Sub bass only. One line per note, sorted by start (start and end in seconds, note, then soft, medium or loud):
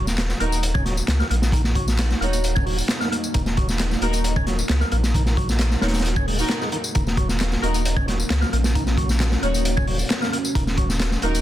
0.00 0.34 D#1 loud
0.40 1.02 D#1 loud
1.08 1.23 C#2 medium
1.30 2.15 A#1 loud
2.21 2.82 D#1 loud
3.35 3.96 D#1 loud
4.01 4.63 D#1 loud
4.69 4.84 C#2 medium
4.92 5.76 A#1 loud
5.82 6.43 D#1 loud
6.96 7.57 D#1 loud
7.63 8.24 D#1 loud
8.30 8.45 C#2 medium
8.53 9.37 A#1 loud
9.43 10.04 D#1 loud
10.55 11.17 D#1 loud
11.23 11.41 D#1 loud